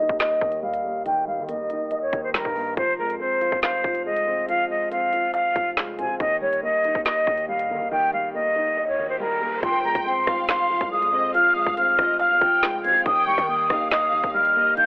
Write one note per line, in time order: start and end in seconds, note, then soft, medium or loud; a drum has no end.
0.00 0.40 D#3 medium
0.00 0.61 G3 medium
0.00 0.83 A#3 medium
0.00 1.06 D#4 medium
0.00 0.18 D#5 medium
0.09 0.40 D#2 loud
0.09 kick loud
0.19 0.60 D#5 medium
0.19 1.27 D#5 loud
0.19 snare loud
0.19 clap loud
0.19 closed hi-hat medium
0.41 1.39 D#2 loud
0.41 1.04 D#3 medium
0.41 kick loud
0.52 closed hi-hat medium
0.63 1.26 G3 medium
0.63 1.03 F5 medium
0.74 closed hi-hat medium
0.85 1.47 A#3 medium
1.06 2.12 D#3 medium
1.06 1.25 G5 loud
1.06 closed hi-hat medium
1.27 2.33 G3 medium
1.27 1.47 F5 medium
1.38 1.56 D#3 loud
1.48 2.55 A#3 medium
1.48 1.99 D#5 medium
1.48 closed hi-hat medium
1.54 1.69 D#2 loud
1.70 2.77 D#4 medium
1.70 closed hi-hat medium
1.91 2.77 D#5 medium
1.91 closed hi-hat medium
2.02 2.22 C#5 medium
2.13 2.36 D#2 loud
2.13 2.78 D#3 medium
2.13 kick loud
2.13 closed hi-hat medium
2.24 2.33 C5 medium
2.34 2.45 C#2 loud
2.34 2.77 G3 medium
2.34 2.75 A#4 medium
2.34 snare loud
2.34 clap medium
2.45 2.76 G2 loud
2.45 kick medium
2.56 2.77 A#3 medium
2.56 open hi-hat medium
2.77 3.00 F1 loud
2.77 3.83 F3 medium
2.77 2.97 C5 loud
2.77 kick loud
2.77 closed hi-hat medium
2.99 3.19 F2 loud
2.99 4.04 G#3 medium
2.99 3.18 A#4 medium
3.10 closed hi-hat medium
3.20 4.26 C4 medium
3.20 3.60 C5 medium
3.41 4.49 F4 medium
3.41 closed hi-hat medium
3.52 3.83 F1 loud
3.52 kick loud
3.62 4.03 C5 medium
3.62 4.70 F5 loud
3.62 snare loud
3.62 clap loud
3.62 closed hi-hat medium
3.84 4.56 F1 loud
3.84 4.47 F3 medium
3.84 kick medium
3.95 closed hi-hat medium
4.06 4.68 G#3 medium
4.06 4.46 D#5 medium
4.17 closed hi-hat medium
4.27 4.90 C4 medium
4.49 5.54 F3 medium
4.49 4.68 F5 loud
4.49 closed hi-hat medium
4.70 5.76 G#3 medium
4.70 4.89 D#5 medium
4.91 5.97 C4 medium
4.91 5.32 F5 medium
4.91 closed hi-hat medium
5.13 6.20 F4 medium
5.13 closed hi-hat medium
5.34 6.20 F5 loud
5.34 5.70 F5 medium
5.34 closed hi-hat medium
5.56 6.00 F1 loud
5.56 6.20 F3 medium
5.56 kick loud
5.56 closed hi-hat medium
5.77 6.20 G#3 medium
5.77 snare loud
5.77 clap medium
5.99 6.11 C3 loud
5.99 6.20 C4 medium
5.99 6.18 G#5 medium
5.99 closed hi-hat medium
6.09 6.20 F1 loud
6.20 6.61 D#2 loud
6.20 7.25 D#3 medium
6.20 6.39 D#5 loud
6.20 kick loud
6.20 closed hi-hat medium
6.41 7.47 G3 medium
6.41 6.61 C#5 medium
6.53 closed hi-hat medium
6.63 7.69 A#3 medium
6.63 7.04 D#5 medium
6.84 7.92 D#4 medium
6.84 closed hi-hat medium
6.95 7.26 D#2 loud
6.95 kick loud
7.05 7.46 D#5 medium
7.05 8.13 D#5 loud
7.05 snare loud
7.05 clap loud
7.05 closed hi-hat medium
7.27 7.72 D#2 loud
7.27 7.90 D#3 medium
7.27 kick medium
7.38 closed hi-hat medium
7.48 8.12 G3 medium
7.48 7.89 F5 medium
7.59 closed hi-hat medium
7.70 7.82 D#3 loud
7.70 8.33 A#3 medium
7.81 7.91 D#2 loud
7.91 8.98 D#3 loud
7.91 8.11 G5 loud
7.91 riser medium
8.13 9.18 G3 medium
8.13 8.32 F5 medium
8.34 9.41 A#3 medium
8.34 8.85 D#5 medium
8.56 9.63 D#4 medium
8.77 9.63 D#5 medium
8.88 9.07 C#5 medium
8.99 9.63 D#3 medium
9.09 9.19 C5 medium
9.20 9.63 G3 medium
9.20 9.61 A#4 medium
9.42 9.63 A#3 medium
9.62 9.86 F1 loud
9.62 10.69 F3 loud
9.62 10.23 G5 loud
9.62 9.82 C6 loud
9.62 kick loud
9.62 closed hi-hat medium
9.84 9.95 F2 loud
9.84 10.90 G#3 medium
9.84 10.04 A#5 medium
9.95 10.26 D#1 loud
9.95 kick medium
9.95 closed hi-hat medium
10.05 11.11 C4 medium
10.05 10.46 C6 medium
10.27 10.79 F1 loud
10.27 11.34 F4 medium
10.27 11.09 F5 medium
10.27 kick loud
10.27 cross-stick loud
10.27 closed hi-hat medium
10.48 11.56 F5 loud
10.48 10.89 C6 medium
10.48 snare loud
10.48 clap loud
10.48 closed hi-hat medium
10.70 11.33 F3 medium
10.81 11.04 C2 loud
10.81 kick medium
10.81 closed hi-hat medium
10.91 11.54 G#3 medium
10.91 11.32 D#6 medium
11.02 11.33 F2 loud
11.02 closed hi-hat medium
11.13 11.76 C4 medium
11.13 11.33 D#5 medium
11.34 12.40 F3 loud
11.34 11.95 F5 loud
11.34 11.54 F6 loud
11.34 closed hi-hat medium
11.55 12.62 G#3 medium
11.55 11.75 D#6 medium
11.67 11.97 F1 loud
11.67 kick loud
11.77 12.83 C4 medium
11.77 12.18 F6 medium
11.77 closed hi-hat medium
11.99 12.32 F1 loud
11.99 13.06 F4 medium
11.99 12.19 D#5 medium
11.99 kick loud
11.99 cross-stick medium
11.99 closed hi-hat medium
12.19 13.06 F5 loud
12.19 12.41 F5 medium
12.19 12.62 F6 loud
12.19 closed hi-hat medium
12.31 12.41 F2 loud
12.41 12.86 F1 loud
12.41 13.06 F3 medium
12.41 12.82 G5 medium
12.41 kick loud
12.41 closed hi-hat medium
12.63 13.06 G#3 medium
12.63 snare loud
12.63 clap medium
12.84 12.97 C3 loud
12.84 13.06 C4 medium
12.84 13.05 F5 medium
12.84 13.04 G#6 medium
12.84 closed hi-hat medium
12.95 13.05 F1 loud
13.06 13.37 D#2 loud
13.06 14.11 D#3 medium
13.06 13.66 G5 loud
13.06 13.25 D#6 loud
13.06 kick loud
13.06 closed hi-hat medium
13.27 14.33 G3 medium
13.27 13.47 C#6 medium
13.38 13.69 D#3 loud
13.38 kick medium
13.38 closed hi-hat medium
13.48 14.55 A#3 medium
13.48 13.89 D#6 loud
13.70 14.22 D#2 loud
13.70 14.78 D#4 medium
13.70 14.52 F5 medium
13.70 kick loud
13.70 cross-stick loud
13.70 closed hi-hat medium
13.91 14.86 D#5 loud
13.91 14.32 D#6 medium
13.91 snare loud
13.91 clap loud
13.91 closed hi-hat medium
14.13 14.76 D#3 medium
14.23 14.75 D#2 loud
14.23 kick medium
14.23 closed hi-hat medium
14.34 14.86 G3 medium
14.34 14.75 F6 medium
14.45 closed hi-hat medium
14.56 14.86 A#3 medium
14.56 14.76 D#5 medium
14.77 14.86 D#3 medium
14.77 14.86 F5 loud
14.77 14.86 G6 loud
14.77 closed hi-hat medium